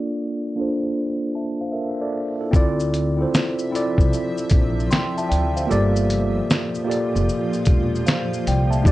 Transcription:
Already playing: A#3 D4 F4 A4 D5
0.56 A#3 D4 F4 A4
0.61 C5
1.35 E5 A5
1.61 C5 F5
1.72 A#4 E5
2.01 A4 D5
2.41 E4 A4
2.51 D2 C3 F3 C4 E4 F4 A4 E5, kick, shaker
2.56 D5
2.80 shaker
2.94 closed hi-hat, shaker
3.17 C4 E4 F4 A4
3.22 C5
3.34 snare, shaker
3.59 shaker
3.71 C4 E4 F4 A4
3.75 D5, closed hi-hat, shaker
3.98 C2, kick, shaker
4.13 shaker
4.38 shaker
4.50 A#1, kick, closed hi-hat, shaker
4.80 shaker
4.91 G5 C6, snare, shaker
5.18 E5 A5, shaker
5.29 D2 D5 G5, closed hi-hat, shaker
5.56 C5 F5, shaker
5.67 G1 A#2 F3 A#3 F4 G4 A4
5.71 D5, shaker
5.96 shaker
6.10 closed hi-hat, shaker
6.50 snare, shaker
6.75 shaker
6.84 A#3 F4 G4 A4
6.90 D5, closed hi-hat, shaker
7.15 F1, shaker
7.29 shaker
7.53 shaker
7.65 E1, kick, closed hi-hat, shaker
7.95 shaker
8.06 C5 F5, snare, shaker
8.33 shaker
8.47 C2 D5 G5, closed hi-hat, shaker
8.71 E5 A5, shaker
8.82 F1 A3 D#4 F4 G4, kick, shaker
8.88 D5

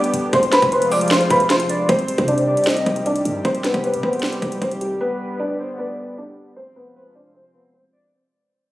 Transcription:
Already playing: D3 G3 B3 G4 D5 D6
0.04 closed hi-hat
0.14 G1, closed hi-hat
0.33 F1 C3 F3 G#3 F4 C5 C6, kick, closed hi-hat
0.43 closed hi-hat
0.52 B4 B5, snare, closed hi-hat
0.62 F1, kick, closed hi-hat
0.72 B4 C5 C6, closed hi-hat
0.82 closed hi-hat
0.92 C5 D5 D6, open hi-hat
1.01 closed hi-hat
1.08 C5 C6, snare, closed hi-hat
1.14 closed hi-hat
1.21 closed hi-hat
1.30 F1 B4 B5, kick, closed hi-hat
1.40 closed hi-hat
1.50 C5 C6, snare, closed hi-hat
1.60 closed hi-hat
1.69 D5, closed hi-hat
1.89 C2 C3 D#3 G3 C4 G4 C5, kick, closed hi-hat
1.99 closed hi-hat
2.08 D2, closed hi-hat
2.18 C3, kick, closed hi-hat
2.28 D4 D5, closed hi-hat
2.38 closed hi-hat
2.47 D5
2.57 closed hi-hat
2.64 C4 C5 D#5, snare, closed hi-hat
2.70 closed hi-hat
2.77 closed hi-hat
2.86 C2, kick, closed hi-hat
2.96 closed hi-hat
3.06 D4 D5, closed hi-hat
3.16 closed hi-hat
3.25 G2, closed hi-hat
3.45 C2 C4 C5, kick, closed hi-hat
3.55 closed hi-hat
3.64 B3 B4, snare, closed hi-hat
3.74 C2, kick, closed hi-hat
3.84 C4 B4 C5, closed hi-hat
3.94 C3, closed hi-hat
4.03 C2 B3 B4 C5, kick
4.13 closed hi-hat
4.19 snare, closed hi-hat
4.26 closed hi-hat
4.32 closed hi-hat
4.42 C2, kick, closed hi-hat
4.52 closed hi-hat
4.62 C2 C4 C5, kick, closed hi-hat
4.71 closed hi-hat
4.81 G3 G4, closed hi-hat
5.01 D3 B3 B4
5.39 D4 D5
5.59 C5
5.79 B3 B4 D5
6.18 D4 D5
6.56 C3 F3 G#3 C4 F4 C5
6.76 B3 B4
6.95 C4 B4 C5
7.15 D4 C5 D5
7.34 C4 C5
7.54 B3 B4
7.74 C4 C5
7.93 D5

